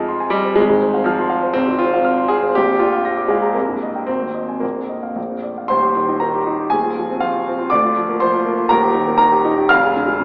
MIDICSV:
0, 0, Header, 1, 2, 480
1, 0, Start_track
1, 0, Key_signature, -3, "major"
1, 0, Tempo, 493421
1, 571, Time_signature, 2, 2, 24, 8
1, 3460, Tempo, 533808
1, 5860, Tempo, 497925
1, 9732, End_track
2, 0, Start_track
2, 0, Title_t, "Grand piano"
2, 0, Program_c, 0, 0
2, 0, Control_c, 0, 64, 127
2, 0, Note_on_c, 0, 41, 73
2, 0, Note_on_c, 0, 48, 51
2, 0, Note_on_c, 0, 53, 90
2, 0, Note_on_c, 0, 68, 55
2, 0, Note_on_c, 0, 75, 57
2, 82, Note_on_c, 0, 84, 62
2, 164, Note_off_c, 0, 75, 0
2, 197, Note_on_c, 0, 80, 64
2, 280, Note_off_c, 0, 84, 0
2, 293, Note_on_c, 0, 55, 98
2, 315, Note_on_c, 0, 75, 61
2, 319, Note_off_c, 0, 53, 0
2, 396, Note_off_c, 0, 80, 0
2, 435, Note_on_c, 0, 72, 52
2, 514, Note_off_c, 0, 75, 0
2, 537, Note_off_c, 0, 41, 0
2, 540, Note_on_c, 0, 56, 102
2, 551, Note_off_c, 0, 55, 0
2, 561, Note_on_c, 0, 32, 77
2, 562, Note_off_c, 0, 72, 0
2, 590, Note_off_c, 0, 48, 0
2, 590, Control_c, 0, 64, 0
2, 591, Note_off_c, 0, 68, 0
2, 678, Note_on_c, 0, 44, 55
2, 751, Control_c, 0, 64, 127
2, 797, Note_on_c, 0, 72, 57
2, 872, Note_off_c, 0, 44, 0
2, 915, Note_on_c, 0, 77, 61
2, 991, Note_off_c, 0, 72, 0
2, 1013, Note_on_c, 0, 53, 86
2, 1028, Note_off_c, 0, 56, 0
2, 1031, Note_on_c, 0, 89, 68
2, 1109, Note_off_c, 0, 77, 0
2, 1156, Note_on_c, 0, 84, 64
2, 1226, Note_off_c, 0, 89, 0
2, 1260, Note_on_c, 0, 77, 67
2, 1265, Note_off_c, 0, 53, 0
2, 1349, Note_off_c, 0, 84, 0
2, 1391, Note_on_c, 0, 72, 59
2, 1461, Note_off_c, 0, 77, 0
2, 1486, Note_off_c, 0, 32, 0
2, 1493, Note_on_c, 0, 60, 103
2, 1512, Note_on_c, 0, 32, 79
2, 1515, Note_off_c, 0, 72, 0
2, 1539, Control_c, 0, 64, 0
2, 1633, Note_on_c, 0, 44, 53
2, 1720, Control_c, 0, 64, 127
2, 1737, Note_on_c, 0, 65, 96
2, 1749, Note_off_c, 0, 60, 0
2, 1754, Note_on_c, 0, 72, 59
2, 1831, Note_off_c, 0, 44, 0
2, 1882, Note_on_c, 0, 77, 63
2, 1952, Note_off_c, 0, 72, 0
2, 1990, Note_on_c, 0, 89, 69
2, 2077, Note_off_c, 0, 77, 0
2, 2116, Note_on_c, 0, 84, 60
2, 2191, Note_off_c, 0, 89, 0
2, 2222, Note_on_c, 0, 68, 96
2, 2234, Note_off_c, 0, 65, 0
2, 2240, Note_on_c, 0, 77, 62
2, 2314, Note_off_c, 0, 84, 0
2, 2359, Note_on_c, 0, 72, 54
2, 2437, Note_off_c, 0, 77, 0
2, 2456, Note_off_c, 0, 32, 0
2, 2477, Note_off_c, 0, 68, 0
2, 2483, Note_on_c, 0, 67, 101
2, 2485, Note_off_c, 0, 72, 0
2, 2499, Note_on_c, 0, 34, 74
2, 2507, Control_c, 0, 64, 0
2, 2606, Note_on_c, 0, 41, 52
2, 2647, Control_c, 0, 64, 127
2, 2718, Note_on_c, 0, 65, 86
2, 2728, Note_off_c, 0, 67, 0
2, 2734, Note_on_c, 0, 74, 50
2, 2801, Note_off_c, 0, 41, 0
2, 2849, Note_on_c, 0, 77, 53
2, 2925, Note_off_c, 0, 74, 0
2, 2966, Note_on_c, 0, 94, 60
2, 3042, Note_off_c, 0, 77, 0
2, 3087, Note_on_c, 0, 86, 57
2, 3162, Note_off_c, 0, 94, 0
2, 3194, Note_on_c, 0, 56, 81
2, 3206, Note_off_c, 0, 65, 0
2, 3212, Note_on_c, 0, 77, 55
2, 3284, Note_off_c, 0, 86, 0
2, 3326, Note_on_c, 0, 82, 50
2, 3409, Note_off_c, 0, 77, 0
2, 3436, Note_off_c, 0, 34, 0
2, 3447, Note_on_c, 0, 58, 76
2, 3451, Note_off_c, 0, 56, 0
2, 3455, Note_off_c, 0, 82, 0
2, 3461, Note_on_c, 0, 36, 69
2, 3477, Control_c, 0, 64, 0
2, 3578, Note_on_c, 0, 43, 46
2, 3631, Control_c, 0, 64, 127
2, 3704, Note_on_c, 0, 75, 50
2, 3766, Note_off_c, 0, 43, 0
2, 3817, Note_on_c, 0, 79, 47
2, 3889, Note_off_c, 0, 75, 0
2, 3918, Note_off_c, 0, 36, 0
2, 3918, Note_on_c, 0, 60, 77
2, 3925, Note_off_c, 0, 58, 0
2, 3934, Note_off_c, 0, 79, 0
2, 3936, Note_on_c, 0, 32, 60
2, 3947, Control_c, 0, 64, 0
2, 4048, Note_on_c, 0, 39, 43
2, 4088, Control_c, 0, 64, 127
2, 4169, Note_on_c, 0, 75, 46
2, 4244, Note_off_c, 0, 39, 0
2, 4297, Note_on_c, 0, 80, 43
2, 4366, Note_off_c, 0, 75, 0
2, 4400, Note_on_c, 0, 58, 70
2, 4406, Note_off_c, 0, 32, 0
2, 4411, Note_off_c, 0, 60, 0
2, 4418, Note_on_c, 0, 34, 55
2, 4419, Note_off_c, 0, 80, 0
2, 4438, Control_c, 0, 64, 0
2, 4542, Note_on_c, 0, 41, 38
2, 4568, Control_c, 0, 64, 127
2, 4660, Note_on_c, 0, 75, 40
2, 4738, Note_off_c, 0, 41, 0
2, 4783, Note_on_c, 0, 77, 42
2, 4857, Note_off_c, 0, 75, 0
2, 4886, Note_off_c, 0, 34, 0
2, 4899, Note_off_c, 0, 58, 0
2, 4899, Note_on_c, 0, 34, 55
2, 4907, Note_off_c, 0, 77, 0
2, 4927, Control_c, 0, 64, 0
2, 5027, Note_on_c, 0, 41, 38
2, 5069, Control_c, 0, 64, 127
2, 5146, Note_on_c, 0, 74, 42
2, 5224, Note_off_c, 0, 41, 0
2, 5277, Note_on_c, 0, 77, 41
2, 5342, Note_off_c, 0, 74, 0
2, 5371, Note_on_c, 0, 84, 99
2, 5373, Note_off_c, 0, 34, 0
2, 5383, Note_on_c, 0, 27, 68
2, 5385, Note_on_c, 0, 72, 78
2, 5390, Note_on_c, 0, 39, 69
2, 5393, Note_off_c, 0, 77, 0
2, 5410, Control_c, 0, 64, 0
2, 5498, Note_on_c, 0, 67, 51
2, 5580, Control_c, 0, 64, 127
2, 5622, Note_on_c, 0, 51, 49
2, 5691, Note_off_c, 0, 67, 0
2, 5734, Note_on_c, 0, 63, 51
2, 5811, Note_off_c, 0, 51, 0
2, 5822, Note_off_c, 0, 72, 0
2, 5836, Note_on_c, 0, 82, 75
2, 5848, Note_off_c, 0, 84, 0
2, 5848, Note_on_c, 0, 70, 53
2, 5855, Note_on_c, 0, 51, 56
2, 5927, Note_off_c, 0, 63, 0
2, 5976, Note_on_c, 0, 67, 54
2, 6051, Note_off_c, 0, 51, 0
2, 6091, Note_on_c, 0, 63, 59
2, 6171, Note_off_c, 0, 67, 0
2, 6219, Note_on_c, 0, 67, 52
2, 6287, Note_off_c, 0, 63, 0
2, 6300, Note_off_c, 0, 70, 0
2, 6305, Note_off_c, 0, 27, 0
2, 6309, Note_off_c, 0, 39, 0
2, 6316, Note_on_c, 0, 80, 95
2, 6320, Note_on_c, 0, 27, 64
2, 6327, Note_on_c, 0, 68, 73
2, 6328, Note_off_c, 0, 82, 0
2, 6329, Note_on_c, 0, 39, 72
2, 6339, Note_off_c, 0, 67, 0
2, 6354, Control_c, 0, 64, 0
2, 6446, Note_on_c, 0, 65, 54
2, 6484, Control_c, 0, 64, 127
2, 6577, Note_on_c, 0, 53, 52
2, 6645, Note_off_c, 0, 65, 0
2, 6694, Note_on_c, 0, 60, 58
2, 6772, Note_off_c, 0, 53, 0
2, 6780, Note_off_c, 0, 68, 0
2, 6803, Note_on_c, 0, 77, 85
2, 6809, Note_off_c, 0, 80, 0
2, 6809, Note_on_c, 0, 65, 67
2, 6817, Note_on_c, 0, 53, 55
2, 6891, Note_off_c, 0, 60, 0
2, 6910, Note_off_c, 0, 65, 0
2, 6925, Note_on_c, 0, 65, 60
2, 7013, Note_off_c, 0, 53, 0
2, 7066, Note_on_c, 0, 60, 59
2, 7128, Note_off_c, 0, 65, 0
2, 7173, Note_on_c, 0, 65, 55
2, 7259, Note_off_c, 0, 60, 0
2, 7267, Note_off_c, 0, 27, 0
2, 7272, Note_off_c, 0, 39, 0
2, 7280, Note_on_c, 0, 86, 106
2, 7291, Note_on_c, 0, 74, 80
2, 7297, Note_off_c, 0, 77, 0
2, 7300, Note_off_c, 0, 65, 0
2, 7302, Note_on_c, 0, 38, 78
2, 7325, Control_c, 0, 64, 0
2, 7417, Note_on_c, 0, 65, 59
2, 7485, Control_c, 0, 64, 127
2, 7539, Note_on_c, 0, 53, 59
2, 7612, Note_off_c, 0, 65, 0
2, 7658, Note_on_c, 0, 58, 60
2, 7731, Note_off_c, 0, 53, 0
2, 7740, Note_off_c, 0, 74, 0
2, 7765, Note_on_c, 0, 84, 96
2, 7768, Note_off_c, 0, 86, 0
2, 7779, Note_on_c, 0, 72, 79
2, 7782, Note_on_c, 0, 53, 63
2, 7848, Note_off_c, 0, 58, 0
2, 7897, Note_on_c, 0, 65, 60
2, 7969, Note_off_c, 0, 53, 0
2, 8014, Note_on_c, 0, 58, 68
2, 8085, Note_off_c, 0, 65, 0
2, 8132, Note_on_c, 0, 65, 61
2, 8202, Note_off_c, 0, 58, 0
2, 8216, Note_off_c, 0, 72, 0
2, 8219, Note_off_c, 0, 38, 0
2, 8236, Note_on_c, 0, 82, 104
2, 8242, Note_off_c, 0, 84, 0
2, 8244, Note_on_c, 0, 27, 82
2, 8249, Note_off_c, 0, 65, 0
2, 8249, Note_on_c, 0, 70, 84
2, 8252, Note_on_c, 0, 39, 82
2, 8269, Control_c, 0, 64, 0
2, 8369, Note_on_c, 0, 67, 64
2, 8414, Control_c, 0, 64, 127
2, 8483, Note_on_c, 0, 51, 62
2, 8555, Note_off_c, 0, 67, 0
2, 8609, Note_on_c, 0, 58, 63
2, 8671, Note_off_c, 0, 51, 0
2, 8686, Note_off_c, 0, 70, 0
2, 8689, Note_off_c, 0, 82, 0
2, 8704, Note_on_c, 0, 82, 106
2, 8712, Note_on_c, 0, 70, 78
2, 8721, Note_on_c, 0, 51, 61
2, 8795, Note_off_c, 0, 58, 0
2, 8844, Note_on_c, 0, 67, 65
2, 8916, Note_off_c, 0, 51, 0
2, 8966, Note_on_c, 0, 63, 72
2, 9044, Note_off_c, 0, 67, 0
2, 9092, Note_on_c, 0, 67, 60
2, 9169, Note_off_c, 0, 63, 0
2, 9180, Note_off_c, 0, 70, 0
2, 9187, Note_off_c, 0, 27, 0
2, 9191, Note_off_c, 0, 39, 0
2, 9200, Note_on_c, 0, 89, 124
2, 9207, Note_on_c, 0, 29, 83
2, 9211, Note_off_c, 0, 82, 0
2, 9212, Note_on_c, 0, 77, 95
2, 9215, Note_on_c, 0, 41, 84
2, 9218, Note_off_c, 0, 67, 0
2, 9234, Control_c, 0, 64, 0
2, 9342, Note_on_c, 0, 68, 63
2, 9402, Control_c, 0, 64, 127
2, 9465, Note_on_c, 0, 50, 58
2, 9532, Note_off_c, 0, 68, 0
2, 9573, Note_on_c, 0, 56, 60
2, 9652, Note_off_c, 0, 50, 0
2, 9691, Note_on_c, 0, 50, 58
2, 9732, Note_off_c, 0, 29, 0
2, 9732, Note_off_c, 0, 41, 0
2, 9732, Note_off_c, 0, 50, 0
2, 9732, Note_off_c, 0, 56, 0
2, 9732, Note_off_c, 0, 77, 0
2, 9732, Note_off_c, 0, 89, 0
2, 9732, End_track
0, 0, End_of_file